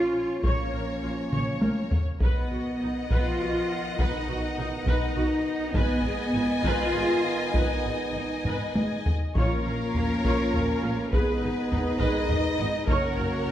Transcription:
0.00 0.40 F3 soft
0.00 0.40 C#4 medium
0.00 0.43 F4 medium
0.00 0.44 F4 medium
0.00 0.40 C#5 soft
0.43 0.52 A#1 medium
0.43 1.88 F3 medium
0.43 1.90 A#3 medium
0.43 1.88 C#4 medium
0.43 0.71 C#5 soft
0.43 1.99 C#5 medium
0.43 1.99 C#5 soft
0.43 taiko medium
0.73 0.82 A#1 soft
0.73 0.81 A#4 soft
1.03 1.11 A#1 soft
1.03 1.11 F4 soft
1.32 1.40 A#1 medium
1.32 1.60 C#5 soft
1.32 taiko mid medium
1.62 1.70 A#1 soft
1.62 1.70 A#4 soft
1.62 taiko high medium
1.91 taiko low medium
2.20 2.29 B1 soft
2.20 5.71 D#3 soft
2.20 3.08 B3 medium
2.20 5.71 B3 soft
2.20 2.50 B4 soft
2.20 5.71 D#5 soft
2.20 5.71 F#5 medium
2.20 taiko medium
2.51 2.59 B1 soft
2.51 2.59 F#4 soft
2.81 2.89 B1 soft
2.81 2.89 D#4 soft
3.11 3.19 B1 medium
3.11 3.99 F3 medium
3.11 4.00 F4 medium
3.11 3.39 B4 medium
3.11 taiko medium
3.40 3.48 B1 soft
3.40 3.48 F#4 soft
3.99 4.07 B1 medium
3.99 4.86 D#4 medium
3.99 4.27 B4 medium
3.99 taiko medium
4.28 4.36 B1 soft
4.28 4.36 F#4 soft
4.57 4.65 B1 medium
4.57 4.66 D#4 medium
4.86 4.94 B1 medium
4.86 5.73 D#4 medium
4.86 5.15 B4 medium
4.86 taiko medium
5.16 5.24 B1 medium
5.16 5.25 F#4 medium
5.73 5.82 G#1 medium
5.73 9.02 D#3 medium
5.73 6.64 B3 medium
5.73 9.01 B3 medium
5.73 6.65 B3 medium
5.73 6.03 B4 medium
5.73 9.11 D#5 medium
5.73 9.11 G#5 medium
5.73 taiko medium
6.03 6.11 G#1 medium
6.03 6.12 G#4 medium
6.34 6.42 G#1 medium
6.34 6.42 D#4 medium
6.64 6.72 G#1 medium
6.64 7.55 F4 medium
6.64 6.93 B4 medium
6.64 taiko medium
6.94 7.02 G#1 soft
6.94 7.03 G#4 soft
7.54 7.63 G#1 medium
7.54 9.02 D#4 soft
7.54 9.06 D#4 medium
7.54 7.83 B4 soft
7.54 taiko medium
7.85 7.93 G#1 soft
7.85 7.93 G#4 soft
8.14 8.22 G#1 soft
8.14 8.23 D#4 soft
8.44 8.52 G#1 soft
8.44 8.74 B4 soft
8.44 taiko low-mid medium
8.75 8.83 G#1 soft
8.75 8.83 G#4 soft
8.75 taiko high medium
9.06 taiko low medium
9.35 9.44 A#1 medium
9.35 9.43 A#2 medium
9.35 10.20 A#2 medium
9.35 11.09 F3 medium
9.35 11.08 A#3 medium
9.35 11.09 C#4 medium
9.35 9.64 F4 medium
9.35 11.09 F4 medium
9.35 11.08 A#4 medium
9.35 11.09 A#4 medium
9.35 9.64 C#5 medium
9.35 11.09 C#5 medium
9.35 11.09 F5 medium
9.35 taiko medium
9.65 9.73 A#1 soft
9.65 9.74 A#2 soft
9.65 9.74 C#4 soft
9.65 9.73 A#4 soft
9.95 10.03 A#1 soft
9.95 10.03 A#2 soft
9.95 10.04 A#3 soft
9.95 10.03 F4 soft
9.95 taiko low soft
10.24 10.32 A#1 medium
10.24 10.33 A#2 medium
10.24 10.52 F4 medium
10.24 10.52 C#5 medium
10.24 taiko medium
10.53 10.61 A#1 soft
10.53 10.62 C#4 soft
10.53 10.62 A#4 soft
10.53 taiko low soft
10.83 10.91 A#1 soft
10.83 10.91 A#2 soft
10.83 10.91 A#3 soft
10.83 10.91 F4 medium
11.12 11.21 G#1 medium
11.12 11.20 G#2 medium
11.12 12.85 D#3 medium
11.12 11.98 B3 medium
11.12 12.88 D#4 medium
11.12 12.84 D#4 medium
11.12 11.39 G#4 medium
11.12 12.88 G#4 medium
11.12 11.39 B4 medium
11.12 11.99 B4 medium
11.12 12.88 B4 medium
11.12 12.01 B4 medium
11.12 12.88 D#5 medium
11.12 taiko medium
11.41 11.50 G#1 soft
11.41 11.49 G#2 soft
11.41 11.50 D#4 soft
11.41 11.49 G#4 soft
11.70 11.80 G#1 soft
11.70 11.80 G#2 soft
11.70 11.78 B3 soft
11.70 11.78 D#4 soft
11.70 taiko low soft
12.00 12.08 G#1 medium
12.00 12.09 G#2 medium
12.00 12.86 D#4 medium
12.00 12.27 G#4 medium
12.00 12.27 B4 medium
12.00 12.88 D#5 medium
12.00 taiko medium
12.29 12.38 G#1 soft
12.29 12.38 G#2 soft
12.29 12.37 D#4 soft
12.29 12.37 G#4 soft
12.29 taiko low medium
12.59 12.67 G#1 soft
12.59 12.68 G#2 soft
12.59 12.67 B3 soft
12.59 12.67 D#4 medium
12.87 12.97 F#1 medium
12.87 12.96 F#2 medium
12.87 13.52 F#3 medium
12.87 13.52 A#3 medium
12.87 13.52 C#4 medium
12.87 13.52 F#4 medium
12.87 13.52 A#4 medium
12.87 13.16 A#4 medium
12.87 13.15 C#5 medium
12.87 13.52 C#5 medium
12.87 13.52 F#5 medium
12.87 taiko medium
13.18 13.26 F#1 soft
13.18 13.26 F#2 soft
13.18 13.26 F#4 soft
13.18 13.26 A#4 soft
13.47 13.52 F#1 soft
13.47 13.52 F#2 soft
13.47 13.52 C#4 soft
13.47 13.52 F#4 soft

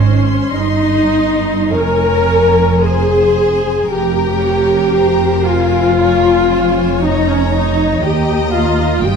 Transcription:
0.00 0.48 G#1 medium
0.00 0.48 G#2 medium
0.00 0.53 C#4 medium
0.00 0.49 C5 medium
0.00 0.52 C#5 medium
0.00 1.68 C6 medium
0.51 1.69 G1 medium
0.51 1.69 G2 medium
0.51 1.72 D#4 medium
0.51 1.73 D#4 medium
0.51 1.74 D#5 medium
0.51 1.71 D#5 medium
1.71 3.88 F1 medium
1.71 3.88 F2 medium
1.71 2.82 A#4 medium
1.71 2.79 C#5 medium
1.71 2.78 C#5 medium
1.71 2.80 G#5 medium
1.71 2.84 A#5 medium
2.81 3.89 G#4 medium
2.81 3.89 C5 medium
2.81 3.86 G#5 medium
2.81 3.87 G#5 medium
3.87 7.99 F1 medium
3.87 7.99 F2 medium
3.87 5.44 G4 medium
3.87 4.40 A#4 medium
3.87 5.96 A#4 medium
3.87 5.48 G5 medium
3.87 4.92 A#5 medium
4.40 4.93 C#5 medium
4.94 6.00 C5 medium
4.94 5.46 A#5 medium
5.46 6.99 F4 medium
5.46 7.02 F4 medium
5.46 6.76 F5 medium
5.46 5.98 G#5 medium
5.99 6.51 A#4 medium
5.99 6.50 C#5 medium
5.99 7.00 G#5 medium
6.51 7.03 C5 medium
6.51 8.03 C#5 medium
7.01 7.27 D#4 medium
7.01 8.01 C#5 medium
7.01 7.29 D#5 medium
7.01 8.01 A#5 medium
7.27 7.52 C#4 medium
7.27 7.53 C#4 medium
7.27 7.53 C#5 medium
7.52 8.02 D#4 medium
7.52 7.88 D#4 medium
7.52 8.04 D#5 medium
8.02 9.02 D#2 medium
8.02 8.53 G4 medium
8.02 9.02 D#5 medium
8.02 9.04 D#5 medium
8.02 8.53 G5 medium
8.02 9.02 A#5 medium
8.52 9.04 F4 medium
8.52 9.03 F4 medium
8.52 9.03 F5 medium
9.03 9.16 G1 medium
9.03 9.16 G2 medium
9.03 9.16 G4 medium
9.03 9.16 D#5 medium
9.03 9.16 G5 medium

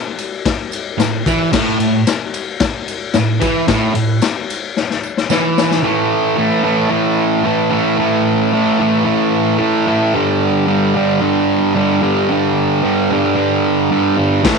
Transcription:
0.18 ride medium
0.18 tambourine medium
0.46 kick loud
0.46 snare loud
0.46 ride loud
0.46 tambourine soft
0.72 ride medium
0.72 tambourine medium
0.98 1.21 A2 medium
0.98 snare loud
0.98 ride loud
0.98 tambourine loud
1.26 1.52 E3 loud
1.26 kick loud
1.26 ride medium
1.26 tambourine medium
1.52 1.78 A2 loud
1.52 kick loud
1.52 snare loud
1.52 crash loud
1.52 tambourine medium
1.79 2.02 A2 medium
1.79 ride medium
1.79 tambourine soft
2.07 snare loud
2.07 ride loud
2.07 tambourine loud
2.34 ride medium
2.34 tambourine medium
2.60 kick loud
2.60 snare loud
2.60 ride loud
2.60 tambourine soft
2.88 ride medium
2.88 tambourine medium
3.14 3.37 A2 medium
3.14 snare loud
3.14 ride loud
3.14 tambourine loud
3.40 3.67 E3 loud
3.40 kick loud
3.40 ride medium
3.40 tambourine medium
3.68 3.94 A2 loud
3.68 kick loud
3.68 snare loud
3.68 ride loud
3.68 tambourine medium
3.95 4.17 A2 medium
3.95 ride medium
3.95 tambourine soft
4.22 snare loud
4.22 ride loud
4.22 tambourine loud
4.50 ride medium
4.50 tambourine medium
4.77 snare medium
4.77 tambourine soft
4.90 snare medium
5.03 tambourine medium
5.17 snare medium
5.30 5.83 E3 loud
5.30 snare medium
5.30 tambourine loud
5.58 snare loud
5.58 tambourine medium
5.71 snare medium
5.83 6.36 A2 loud
5.83 6.38 E3 loud
5.83 6.38 A3 loud
6.36 6.63 A2 medium
6.36 6.64 E3 medium
6.36 6.65 A3 medium
6.64 6.89 A2 loud
6.64 6.89 E3 loud
6.64 6.90 A3 loud
6.90 7.44 A2 loud
6.90 7.45 E3 loud
6.90 7.46 A3 loud
7.45 7.70 A2 medium
7.45 7.71 E3 medium
7.45 7.72 A3 medium
7.71 7.97 A2 loud
7.71 7.98 E3 loud
7.71 7.99 A3 loud
7.98 8.51 A2 loud
7.98 8.52 E3 loud
7.98 8.52 A3 loud
8.53 8.79 A2 medium
8.53 8.80 E3 medium
8.53 8.81 A3 medium
8.80 9.04 A2 medium
8.80 9.04 E3 loud
8.80 9.06 A3 loud
9.05 9.57 A2 medium
9.05 9.58 E3 loud
9.05 9.59 A3 loud
9.59 9.86 A2 medium
9.59 9.86 E3 medium
9.59 9.87 A3 medium
9.87 10.13 A2 loud
9.87 10.13 E3 loud
9.87 10.14 A3 loud
10.13 10.66 G2 loud
10.13 10.67 D3 loud
10.13 10.68 G3 loud
10.67 10.94 G2 medium
10.67 10.95 D3 medium
10.67 10.96 G3 medium
10.95 11.19 G2 loud
10.95 11.20 D3 medium
10.95 11.21 G3 loud
11.21 11.74 G2 loud
11.21 11.75 D3 loud
11.21 11.75 G3 loud
11.75 12.01 G2 medium
11.75 12.01 D3 medium
11.75 12.02 G3 medium
12.02 12.28 G2 loud
12.02 12.30 D3 loud
12.02 12.30 G3 loud
12.30 12.82 G2 loud
12.30 12.82 D3 loud
12.30 12.83 G3 loud
12.83 13.09 G2 medium
12.83 13.11 D3 medium
12.83 13.12 G3 loud
13.10 13.34 G2 loud
13.10 13.35 D3 medium
13.10 13.35 G3 loud
13.35 13.89 G2 medium
13.35 13.90 D3 loud
13.35 13.91 G3 loud
13.91 14.16 G2 medium
13.91 14.16 D3 medium
13.91 14.17 G3 medium
14.17 14.42 G2 loud
14.17 14.42 D3 loud
14.17 14.43 G3 loud
14.43 14.59 A2 loud
14.43 14.59 E3 loud
14.43 14.59 A3 loud
14.43 kick loud
14.43 snare loud
14.43 crash loud

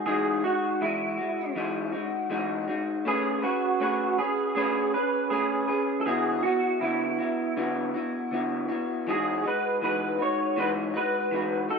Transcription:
0.06 0.44 E3 medium
0.06 0.44 G#3 medium
0.06 0.44 D#4 medium
0.06 0.43 F#4 medium
0.06 0.44 G#4 medium
0.44 0.81 G#3 soft
0.44 0.82 D#4 soft
0.44 0.82 F#4 soft
0.44 0.83 F#4 medium
0.81 1.19 E3 medium
0.81 1.20 G#3 medium
0.81 1.53 E4 medium
0.81 1.16 F#4 medium
1.18 1.55 G#3 soft
1.18 1.56 F#4 medium
1.55 1.94 E3 medium
1.55 1.94 G#3 medium
1.55 1.93 D#4 medium
1.55 1.91 F#4 medium
1.92 2.29 G#3 soft
1.92 2.30 D#4 soft
1.92 2.31 F#4 medium
2.30 2.68 E3 medium
2.30 2.69 G#3 medium
2.30 2.68 D#4 medium
2.30 2.67 F#4 medium
2.68 3.05 G#3 soft
2.68 3.06 D#4 medium
2.68 3.06 F#4 medium
3.05 3.44 A3 medium
3.05 3.44 C#4 medium
3.05 3.43 G#4 medium
3.05 3.41 B4 medium
3.42 3.80 C#4 soft
3.42 3.79 F#4 medium
3.42 3.81 G#4 soft
3.42 3.81 B4 medium
3.80 4.19 A3 medium
3.80 4.19 C#4 medium
3.80 4.18 F#4 medium
3.80 4.19 G#4 medium
3.80 4.17 B4 medium
4.18 4.56 C#4 soft
4.18 4.54 G#4 medium
4.18 4.56 G#4 soft
4.18 4.56 B4 medium
4.55 4.94 A3 medium
4.55 4.94 C#4 medium
4.55 4.91 G#4 loud
4.55 4.94 G#4 medium
4.55 4.92 B4 medium
4.93 5.31 C#4 soft
4.93 5.31 G#4 soft
4.93 5.32 B4 soft
4.93 5.29 B4 medium
5.30 5.69 A3 medium
5.30 5.69 C#4 medium
5.30 6.01 G#4 medium
5.30 5.68 G#4 medium
5.30 5.66 B4 medium
5.68 6.07 C#4 soft
5.68 6.07 G#4 soft
5.68 6.06 B4 medium
6.01 6.05 A4 medium
6.06 6.44 D3 medium
6.06 6.44 B3 medium
6.06 6.45 E4 medium
6.06 6.42 F#4 medium
6.06 6.45 G#4 medium
6.43 6.82 E4 soft
6.43 6.79 F#4 medium
6.43 6.82 F#4 soft
6.47 6.81 B3 soft
6.81 7.19 D3 medium
6.81 7.20 B3 medium
6.81 7.53 E4 medium
6.81 7.19 E4 medium
6.81 7.17 F#4 medium
7.19 7.56 B3 soft
7.19 7.57 E4 soft
7.19 7.57 F#4 soft
7.57 7.94 D3 medium
7.57 7.95 B3 medium
7.57 7.95 E4 medium
7.57 7.93 F#4 medium
7.94 8.32 B3 soft
7.94 8.33 E4 soft
7.94 8.32 F#4 medium
8.31 8.69 D3 medium
8.31 8.70 B3 medium
8.31 8.69 E4 medium
8.31 8.67 F#4 medium
8.68 9.07 B3 soft
8.68 9.07 E4 soft
8.68 9.06 F#4 medium
9.07 9.44 E3 medium
9.07 9.45 G#3 medium
9.07 9.45 D#4 medium
9.07 9.42 F#4 medium
9.07 9.47 G#4 loud
9.44 9.82 G#3 soft
9.44 9.83 D#4 soft
9.44 9.82 F#4 soft
9.44 9.81 B4 medium
9.82 10.19 E3 medium
9.82 10.20 G#3 medium
9.82 10.20 D#4 medium
9.82 10.17 F#4 medium
9.82 10.22 B4 medium
10.19 10.56 G#3 soft
10.19 10.57 D#4 soft
10.19 10.57 F#4 soft
10.19 10.60 C#5 medium
10.56 10.94 E3 medium
10.56 10.95 G#3 medium
10.56 10.95 D#4 medium
10.56 10.93 F#4 medium
10.56 10.70 B4 medium
10.94 11.32 G#3 soft
10.94 11.33 D#4 soft
10.94 11.32 F#4 soft
10.94 11.67 B4 loud
11.31 11.69 E3 medium
11.31 11.70 G#3 medium
11.31 11.69 D#4 medium
11.31 11.67 F#4 medium
11.69 11.79 D#4 soft
11.69 11.79 F#4 soft
11.69 11.79 A4 medium

